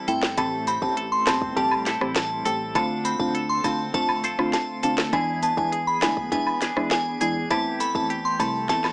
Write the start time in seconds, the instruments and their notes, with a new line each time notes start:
Already playing: clean electric guitar E3 G3 C4 E4
0.08 upright bass G1, synth stab A3 C4 E4, clean electric guitar A4, synth bell G5, closed hi-hat, cabasa
0.23 snare
0.37 upright bass A1, clean electric guitar A2 A4, synth stab A3 C4 G4, synth bell A5, kick, closed hi-hat, high woodblock
0.67 clean electric guitar C4, synth bell B5, closed hi-hat, cabasa
0.82 upright bass A1, synth stab A3 C4 G4, synth bell A5, kick
0.97 clean electric guitar A4, closed hi-hat
1.12 synth bell C6
1.27 upright bass G1, synth stab A3 C4 G4, clean electric guitar C4, synth bell A5, snare, closed hi-hat, cabasa, high woodblock
1.42 kick
1.56 upright bass A1, clean electric guitar G3, synth stab A3 C4 G4, synth bell A5, kick, closed hi-hat
1.71 high woodblock
1.86 clean electric guitar C4 E4 A4, snare, closed hi-hat, cabasa
2.01 upright bass A1, synth stab A3 C4 G4, cross-stick, high woodblock
2.16 synth bell A5, snare, closed hi-hat
2.45 upright bass A1, synth stab A3 C4 G4, clean electric guitar A4, synth bell A5, closed hi-hat, cabasa
2.75 upright bass D2, clean electric guitar D3 A4, synth stab C4 D4 F4, synth bell A5, kick, closed hi-hat, high woodblock
3.05 clean electric guitar C4, synth bell B5, closed hi-hat, cabasa
3.20 upright bass D2, synth stab C4 D4 F4, synth bell A5, kick
3.35 clean electric guitar A4, closed hi-hat
3.49 synth bell C6
3.64 upright bass D2, synth stab C4 D4 F4, clean electric guitar C4, synth bell A5, kick, closed hi-hat, cabasa, high woodblock
3.94 upright bass F2, clean electric guitar A3, synth stab C4 D4 F4, synth bell A5, kick, closed hi-hat
4.09 high woodblock
4.24 clean electric guitar C4 F4 A4, closed hi-hat, cabasa
4.38 upright bass D2, synth stab C4 D4 F4, cross-stick, high woodblock
4.53 synth bell A5, snare, closed hi-hat
4.83 upright bass D2, synth stab C4 D4 F4, clean electric guitar A4, synth bell A5, closed hi-hat, cabasa
4.98 snare
5.13 upright bass E2, clean electric guitar E3 G#4, synth stab G#3 D4 E4, synth bell G#5, kick, closed hi-hat, high woodblock
5.43 clean electric guitar B3, synth bell A5, closed hi-hat, cabasa
5.57 upright bass E2, synth stab G#3 D4 E4, synth bell G#5, kick
5.72 clean electric guitar G#4, closed hi-hat
5.87 synth bell B5
6.02 upright bass D2, synth stab G#3 D4 E4, clean electric guitar B3, synth bell G#5, snare, closed hi-hat, cabasa, high woodblock
6.17 kick
6.32 upright bass E2, synth stab G#3 D4 E4, clean electric guitar B3, synth bell G#5, kick, closed hi-hat
6.47 high woodblock
6.61 clean electric guitar B3 D4 G#4, snare, closed hi-hat, cabasa
6.76 upright bass E2, synth stab G#3 D4 E4, cross-stick, high woodblock
6.91 synth bell G#5, snare, closed hi-hat
7.21 upright bass E2, synth stab G#3 D4 E4, clean electric guitar G#4, synth bell G#5, closed hi-hat, cabasa
7.50 upright bass E2, clean electric guitar E3 G4, synth stab A3 C4 E4, synth bell A5, kick, closed hi-hat, high woodblock
7.80 clean electric guitar A3, synth bell B5, closed hi-hat, cabasa
7.95 upright bass E2, synth stab A3 C4 E4, synth bell A5, kick
8.10 clean electric guitar G4, closed hi-hat
8.25 synth bell C6
8.39 upright bass C2, synth stab A3 C4 E4, clean electric guitar A3, synth bell A5, kick, closed hi-hat, cabasa, high woodblock
8.69 upright bass E2, synth stab A3 C4 E4, clean electric guitar A3, synth bell A5, kick, snare, closed hi-hat
8.84 snare, high woodblock